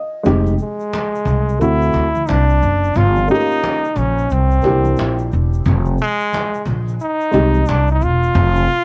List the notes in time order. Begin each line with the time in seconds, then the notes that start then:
Already playing: D#5
0.23 F1 G#3 C4 D#4 G4, cajon bass, shaker
0.47 high conga, shaker
0.58 G#3, cajon slap, high conga, shaker
0.80 shaker
0.93 cajon slap, high conga, shaker
1.15 shaker
1.25 C2, cajon bass, low conga, shaker
1.49 shaker
1.59 D2 A3 C4 E4 F#4, cajon slap, shaker
1.82 shaker
1.93 D2, cajon bass, shaker
2.15 high conga, shaker
2.27 C2 D4, cajon slap, shaker
2.50 shaker
2.62 F#1, cajon slap, low conga, shaker
2.84 shaker
2.94 G1 F4, cajon bass, shaker
3.17 high conga, shaker
3.28 A3 C#4 D#4 F4 G4, high conga, shaker
3.34 A#3
3.51 shaker
3.64 cajon slap, high conga, shaker
3.85 shaker
3.96 A#1 C#4, cajon bass, low conga, shaker
4.18 shaker
4.30 C2 C4, shaker
4.51 shaker
4.62 C2 A#3 D4 E4 G4, cajon bass, shaker
4.85 high conga, shaker
4.96 A#1, cajon slap, shaker
5.18 shaker
5.32 E1, cajon slap, low conga, shaker
5.53 shaker
5.65 F1, cajon bass, shaker
5.86 high conga, shaker
5.98 G#3, cajon slap, high conga, shaker
6.20 shaker
6.33 cajon slap, high conga, shaker
6.54 shaker
6.65 A#1, cajon bass, low conga, shaker
6.88 shaker
7.00 D#4, cajon slap, shaker
7.21 shaker
7.31 C2 G#3 C4 D#4 G4, cajon bass, shaker
7.54 high conga, shaker
7.66 C2 D4, cajon slap, shaker
7.88 shaker
7.92 D#4
8.01 E1 F4, cajon slap, low conga, shaker
8.23 shaker
8.34 F1, cajon bass, shaker
8.56 high conga, shaker
8.67 cajon slap, high conga, shaker